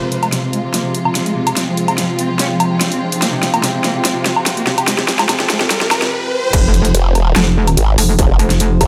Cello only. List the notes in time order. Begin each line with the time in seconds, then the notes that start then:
0.02 C3
0.12 C3
0.23 G#3
0.32 C3
0.43 C3
0.53 G#3
0.64 C3
0.74 A#3
0.85 C3
1.05 C3
1.15 C3
1.26 G#3
1.36 C3
1.47 C3
1.56 C4
1.67 F3
1.77 F3
1.88 C4
1.98 F3
2.09 F3
2.18 C4
2.29 F3
2.39 C#4
2.50 F3
2.71 F3
2.81 F3
2.92 C4
3.01 F3
3.12 F3
3.22 A#3
3.33 C3
3.42 C3
3.53 A#3
3.63 C3
3.74 C3
3.84 A#3
3.95 C3
4.05 C4
4.16 C3
4.36 C3
4.46 C3
4.57 A#3
4.67 C3
4.78 C3
4.87 G#3
4.98 C3
5.08 C3
5.19 G#3
5.29 C3
5.40 C3
5.50 G#3
5.60 C3
5.70 G3
5.81 C3
6.02 C3